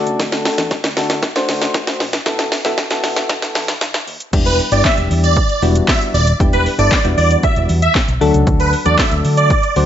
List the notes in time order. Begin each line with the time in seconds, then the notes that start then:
Already playing: A3 D4 F#4 A4 D5
0.06 C#2, closed hi-hat, shaker
0.20 D2, kick, snare, shaker
0.32 snare, closed hi-hat, shaker
0.45 snare, open hi-hat, shaker
0.58 E2, snare, closed hi-hat, shaker
0.71 kick, snare, shaker
0.84 D2, snare, closed hi-hat, shaker
0.97 D3 A3 D4 F#4 A4, snare, open hi-hat, shaker
1.10 snare, closed hi-hat, shaker
1.22 kick, snare, shaker
1.36 A3 D4 F#4 C5, snare, closed hi-hat, shaker
1.48 D2, snare, open hi-hat, shaker
1.62 snare, closed hi-hat, shaker
1.74 kick, snare, shaker
1.87 snare, closed hi-hat, shaker
2.00 A#1, snare, open hi-hat, shaker
2.13 snare, closed hi-hat, shaker
2.26 B1 B3 E4 F#4 A4, kick, snare, shaker
2.39 snare, closed hi-hat, shaker
2.52 snare, open hi-hat, shaker
2.65 B1 B3 E4 F#4 A4, snare, closed hi-hat, shaker
2.77 kick, snare, shaker
2.90 B1 B3 E4 F#4 A4, snare, closed hi-hat, shaker
3.04 B2, snare, open hi-hat, shaker
3.16 snare, closed hi-hat, shaker
3.29 B2, kick, snare, shaker
3.42 snare, closed hi-hat, shaker
3.55 E2, snare, open hi-hat, shaker
3.68 snare, closed hi-hat, shaker
3.81 B1, snare, shaker
3.94 snare, closed hi-hat, shaker
4.07 D#2, open hi-hat, shaker
4.20 closed hi-hat, shaker
4.33 E1 G3 B3 D4 E4 G4, kick, crash, shaker
4.46 B4, closed hi-hat, shaker
4.59 open hi-hat, shaker
4.72 G1 G3 B3 D4 E4 G4 D5, closed hi-hat, shaker
4.85 E5, kick, snare, clap, shaker
4.98 E1, closed hi-hat, shaker
5.11 E2, open hi-hat, shaker
5.24 D5, closed hi-hat, shaker
5.36 kick, shaker
5.49 closed hi-hat, shaker
5.62 E1 G3 B3 D4 E4 F#4, open hi-hat, shaker
5.75 closed hi-hat, shaker
5.88 E5, kick, snare, clap, shaker
6.02 closed hi-hat, shaker
6.14 D#1 D5, open hi-hat, shaker
6.27 closed hi-hat, shaker
6.40 E1 G3 B3 D4 E4 G4, kick, shaker
6.53 B4, closed hi-hat, shaker
6.66 open hi-hat, shaker
6.78 G1 G3 B3 D4 E4 A4 D5, closed hi-hat, shaker
6.92 kick, snare, clap, shaker
7.04 E1 G3 B3 D4 E4 F#4, closed hi-hat, shaker
7.18 E2 D5, open hi-hat, shaker
7.31 closed hi-hat, shaker
7.43 E5, kick, shaker
7.56 E1, closed hi-hat, shaker
7.69 E2, open hi-hat, shaker
7.82 E5, closed hi-hat, shaker
7.95 kick, snare, clap, shaker
8.08 B1, closed hi-hat, shaker
8.21 D2 F#3 A3 D4 F#4 A4, open hi-hat, shaker
8.34 C#2, closed hi-hat, shaker
8.47 D2, kick, shaker
8.60 B4, closed hi-hat, shaker
8.73 open hi-hat, shaker
8.85 E2 F#3 A3 D4 F#4 A4 D5, closed hi-hat, shaker
8.98 E5, kick, snare, clap, shaker
9.11 D2, closed hi-hat, shaker
9.25 D3, open hi-hat, shaker
9.37 D5, closed hi-hat, shaker
9.50 kick, shaker
9.63 closed hi-hat, shaker
9.76 D2 F#3 A3 D4 F#4 C5, open hi-hat, shaker